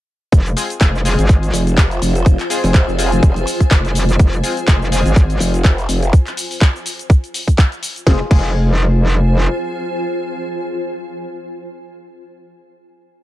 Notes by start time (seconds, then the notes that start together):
0.32 F1 F4, kick, closed hi-hat, shaker
0.46 closed hi-hat, shaker
0.51 C5
0.57 G#3 C4 F4 G#4, open hi-hat, shaker
0.70 closed hi-hat, shaker
0.81 F1 G#3 C4 F4 G#4, kick, clap, closed hi-hat, shaker
0.95 shaker
1.05 G#3 C4 F4 G#4, open hi-hat, shaker
1.19 G#1, closed hi-hat, shaker
1.29 kick, closed hi-hat, shaker
1.43 closed hi-hat, shaker
1.53 F1 G#5, open hi-hat, shaker
1.67 closed hi-hat, shaker
1.78 kick, clap, closed hi-hat, shaker
1.91 closed hi-hat, shaker
2.02 F1, open hi-hat, shaker
2.15 closed hi-hat, shaker
2.26 kick, closed hi-hat, shaker
2.40 clap, closed hi-hat, shaker
2.50 G#3 C4 F4 G#4, open hi-hat, shaker
2.64 F1, open hi-hat, shaker
2.74 G#3 C4 F4 G#4, kick, clap, closed hi-hat, shaker
2.88 F1, shaker
2.99 G#3 C4 F4 G#4, open hi-hat, shaker
3.12 closed hi-hat, shaker
3.23 F1, kick, closed hi-hat, shaker
3.36 closed hi-hat, shaker
3.47 open hi-hat, shaker
3.60 kick, closed hi-hat, shaker
3.71 F1, kick, clap, closed hi-hat, shaker
3.85 closed hi-hat, shaker
3.95 open hi-hat, shaker
4.09 closed hi-hat, shaker
4.19 F1, kick, closed hi-hat, shaker
4.33 closed hi-hat, shaker
4.44 G#3 C4 F4 G#4, open hi-hat, shaker
4.57 closed hi-hat, shaker
4.68 F1 G#3 C4 F4 G#4, kick, clap, closed hi-hat, shaker
4.82 shaker
4.92 G#3 C4 F4 G#4, open hi-hat, shaker
5.06 G#1, closed hi-hat, shaker
5.16 kick, closed hi-hat, shaker
5.30 closed hi-hat, shaker
5.40 F1, open hi-hat, shaker
5.54 closed hi-hat, shaker
5.65 kick, clap, closed hi-hat, shaker
5.78 closed hi-hat, shaker
5.89 F1, open hi-hat, shaker
6.02 closed hi-hat, shaker
6.13 kick, closed hi-hat, shaker
6.27 clap, closed hi-hat, shaker
6.37 open hi-hat, shaker
6.51 open hi-hat, shaker
6.61 kick, clap, closed hi-hat, shaker
6.76 shaker
6.86 open hi-hat, shaker
6.99 closed hi-hat, shaker
7.10 kick, closed hi-hat, shaker
7.24 closed hi-hat, shaker
7.34 open hi-hat, shaker
7.48 kick, closed hi-hat, shaker
7.58 kick, clap, closed hi-hat, shaker
7.72 closed hi-hat, shaker
7.83 open hi-hat, shaker
7.96 closed hi-hat, shaker
8.07 F1 G#3 C4 F4 G#4, kick, snare
8.15 C5
8.22 G#5
8.31 F1 G#3 C4 F4 G#4, kick, crash